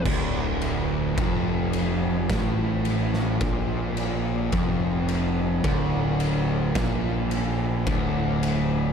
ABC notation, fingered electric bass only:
X:1
M:4/4
L:1/8
Q:1/4=54
K:Dm
V:1 name="Fingered electric bass" clef=bass
D,,,2 F,,,2 A,,,2 B,,,2 | F,,,2 D,,,2 B,,,2 D,,,2 |]